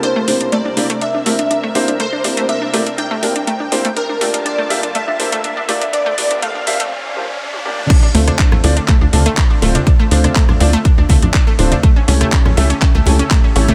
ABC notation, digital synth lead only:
X:1
M:4/4
L:1/8
Q:1/4=122
K:Dm
V:1 name="Digital synth lead"
c2 d2 e4 | c2 e2 g4 | B2 d2 e4 | d2 f2 z4 |
z8 | z8 | z8 |]